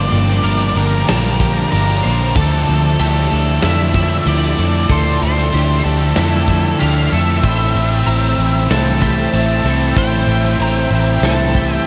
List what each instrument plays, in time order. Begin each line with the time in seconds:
Already playing: overdriven electric guitar G2 D3 F3 G3 A#3 D4, distorted electric guitar D3 F3 D4, analog synth pad A#3 G5 D6, clean electric guitar C5, lead electric guitar D5
0.12 fingered electric bass G1, distorted electric guitar F3, overdriven electric guitar F3, lead electric guitar D5
0.29 snare
0.44 fingered electric bass G1, overdriven electric guitar G2 D3 G3 A#3 D4, clean electric guitar A#4, crash
0.75 fingered electric bass G1, overdriven electric guitar G2 D3 G3 A#3 D4, lead electric guitar A#4
1.08 fingered electric bass A#1, overdriven electric guitar G2 D3 G3 A#3 D4, distorted electric guitar F3, clean electric guitar A5, snare, crash
1.40 distorted electric guitar D3, overdriven electric guitar F3, clean electric guitar G4, kick
1.71 fingered electric bass G1, overdriven electric guitar G2 D3 G3 A#3 D4, distorted electric guitar F3, clean electric guitar A#4, lead electric guitar A#4, crash
2.03 fingered electric bass A#1, overdriven electric guitar G2 D3 G3 A#3 D4, clean electric guitar C5
2.36 fingered electric bass D2, overdriven electric guitar D3 F3 A3 D4, clean electric guitar A4, lead electric guitar A4, analog synth pad D5 E6, kick, crash
2.67 fingered electric bass D2, distorted electric guitar F3, overdriven electric guitar F3
2.99 fingered electric bass D2, overdriven electric guitar D3 F3 A3 D4 E4, clean electric guitar G4, lead electric guitar A4, crash
3.32 fingered electric bass D2, overdriven electric guitar D3 F3 A3 D4
3.62 fingered electric bass F2, overdriven electric guitar D3 F3 A3 D4 E4, clean electric guitar E4, lead electric guitar E5, snare, crash
3.94 distorted electric guitar D3, overdriven electric guitar F3, clean electric guitar E4, kick
4.25 fingered electric bass D2, overdriven electric guitar D3 F3 A3 D4 E4, clean electric guitar G4, lead electric guitar D5, crash
4.58 fingered electric bass F2, overdriven electric guitar D3 F3 A3 D4, distorted electric guitar E4, clean electric guitar A4
4.89 fingered electric bass D2, overdriven electric guitar D3 F3 A3 D4, clean electric guitar A4, lead electric guitar C5, kick, crash
5.20 fingered electric bass D2, overdriven electric guitar F3, distorted electric guitar F3, lead electric guitar C5
5.37 snare
5.52 fingered electric bass D2, overdriven electric guitar D3 F3 A3 D4 E4, clean electric guitar G4, crash
5.84 fingered electric bass D2, overdriven electric guitar D3 F3 A3 D4, lead electric guitar A4
6.16 fingered electric bass F2, overdriven electric guitar D3 F3 A3 D4 E4, clean electric guitar E4, snare, crash
6.48 distorted electric guitar D3, overdriven electric guitar F3, clean electric guitar E4, kick
6.79 fingered electric bass D2, overdriven electric guitar D3 F3 A3 D4 E4, clean electric guitar G4, lead electric guitar F5, crash
7.12 fingered electric bass F2, overdriven electric guitar D3 F3 A3 D4, distorted electric guitar E4, clean electric guitar A4, lead electric guitar E5
7.44 fingered electric bass A1, overdriven electric guitar A2 E3 A3 C4 E4, clean electric guitar C5, analog synth pad C5 E5, kick, crash
7.75 fingered electric bass A1, distorted electric guitar A3, overdriven electric guitar A3
8.07 fingered electric bass A1, overdriven electric guitar A2 E3 A3 C4 E4, clean electric guitar A#5, crash
8.38 fingered electric bass A1, overdriven electric guitar A2 E3 A3 C4 E4
8.70 fingered electric bass C2, overdriven electric guitar A2 E3 A3 C4 E4, clean electric guitar A4, lead electric guitar A5, snare, crash
9.02 distorted electric guitar E3, overdriven electric guitar A3, clean electric guitar G4, lead electric guitar A5, kick
9.33 fingered electric bass A1, overdriven electric guitar A2 E3 A3 C4 E4, clean electric guitar A4, lead electric guitar A5, crash
9.64 fingered electric bass C2, overdriven electric guitar A2 E3 A3 C4 E4, clean electric guitar A4
9.96 fingered electric bass A1, overdriven electric guitar A2 E3 A3 C4 E4, clean electric guitar C5, lead electric guitar G5, kick, crash
10.27 fingered electric bass A1, distorted electric guitar A3, overdriven electric guitar A3
10.44 snare
10.59 fingered electric bass A1, overdriven electric guitar A2 E3 A3 C4 E4, clean electric guitar A#5, crash
10.91 fingered electric bass A1, overdriven electric guitar A2 E3 A3 C4 E4
11.21 fingered electric bass C2, overdriven electric guitar A2 E3 A3 C4 E4, clean electric guitar A4, lead electric guitar A5, snare, crash
11.55 distorted electric guitar E3, overdriven electric guitar A3, clean electric guitar G4, kick
11.74 lead electric guitar G5